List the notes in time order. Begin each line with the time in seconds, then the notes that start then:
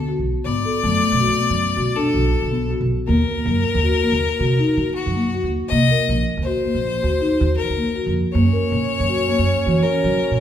Already playing: D2
0.09 F#4
0.19 B1
0.45 G#2 B3 D5
0.65 A4
0.83 F#2 A3
1.12 B1
1.20 F#4
1.39 B3
1.50 F#2
1.77 B1 F#4
1.95 D4 A4
2.14 B1 F#4
2.42 B1
2.51 B3
2.70 F#4
2.81 B1
3.07 D#2 A#3 A#4
3.27 A#4
3.46 F#2 A#3
3.75 D#2
3.84 F#4
4.02 A#3
4.12 D#2
4.39 C3 F#4
4.59 D#4
4.77 D#3 F#4
4.95 F#4
5.06 F#2
5.15 A#3
5.34 F#4
5.44 D#2
5.68 C3 A#3 D#5
5.91 A#4
6.09 A#1 A#3
6.37 D#2
6.43 C5
6.47 F#4
6.65 A#3
6.75 A#1
7.03 D#2 F#4
7.21 D#4
7.40 D#2 F#4
7.57 A#4
7.69 D#2
7.77 A#3
7.96 F#4
8.06 F2
8.32 F#2 A#3 C#4 C#5
8.53 A#4
8.71 A#2 A#3
9.00 F#2
9.09 F#4
9.28 A#3
9.39 F#2
9.66 E3 F#4
9.82 C#4 A#4
10.02 F#3 F#4
10.31 A#2